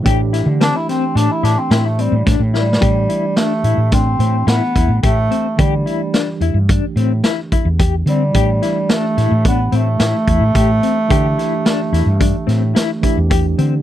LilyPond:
<<
  \new Staff \with { instrumentName = "Clean electric guitar" } { \time 5/4 \key a \minor \tempo 4 = 109 g'8 e'8 c'8 c'8 d'8 e'8 e'8 c'8 d'8 e'8 | g'8 e'8 d'8 e'8 d'8 c'8 e'8 e'8 g'8 c'8 | g'8 e'8 d'8 e'8 d'8 c'8 e'8 e'8 g'8 c'8 | g'8 e'8 d'8 e'8 d'8 c'8 e'8 e'8 g'8 c'8 |
g'8 e'8 d'8 e'8 d'8 c'8 e'8 e'8 g'8 c'8 | }
  \new Staff \with { instrumentName = "Tine electric piano" } { \time 5/4 \key a \minor <e a d' g'>1~ <e a d' g'>4 | <e a d' g'>1~ <e a d' g'>4 | <e a d' g'>1~ <e a d' g'>4 | <e a d' g'>1~ <e a d' g'>4 |
<e a d' g'>2.~ <e a d' g'>8 <e a d' g'>4. | }
  \new Staff \with { instrumentName = "Bass clarinet" } { \time 5/4 \key a \minor r4 d'16 e'16 c'8 d'16 e'16 d'16 c'8 a16 g8 r8 g8~ | g4 a4 c'4 b4 a4 | g4. r2. g8~ | g4 a4 b16. b32 a2~ a8~ |
a1 r4 | }
  \new Staff \with { instrumentName = "Fretless electric bass" } { \clef bass \time 5/4 \key a \minor a,8. d8 r8. a,16 r16 a,16 r16 a,8. a,16 a,16 a,8. | a,8 r4 a,16 a,8. a,8 a,16 r16 e,16 a,16 a,8 r8 | d8 r4 e,16 g,8 r16 a,8 r8. e,8. d8 | a,8 r4 a,16 a,8. a,8 a,16 r16 e,16 a,16 a,8 r8 |
d8 r4 e,16 g,8 r16 a,8 r8. e,8. d8 | }
  \new DrumStaff \with { instrumentName = "Drums" } \drummode { \time 5/4 <hh bd>8 <hh sn>8 <hh sn>8 <hh sn>8 <hh sn>8 <hh sn>8 <hh sn>8 hh8 \tuplet 3/2 { <hh bd sn>16 r16 r16 sn16 r16 sn16 } | <hh bd>8 hh8 <hh sn>8 hh8 <hh bd sn>8 hh8 <hh sn>8 <hh bd>8 <hh bd>8 hh8 | <hh bd>8 hh8 <hh sn>8 hh8 <hh bd>8 hh8 <hh sn>8 <hh bd>8 <hh bd>8 hh8 | <hh bd>8 <hh sn>8 <hh sn>8 <hh sn>8 <hh bd>8 hh8 <hh sn>8 <hh bd>8 <hh bd>8 hh8 |
<hh bd>8 <hh sn>8 <hh sn>8 <hh sn>8 <hh bd>8 <hh sn>8 <hh sn>8 <hh bd>8 <hh bd>8 hh8 | }
>>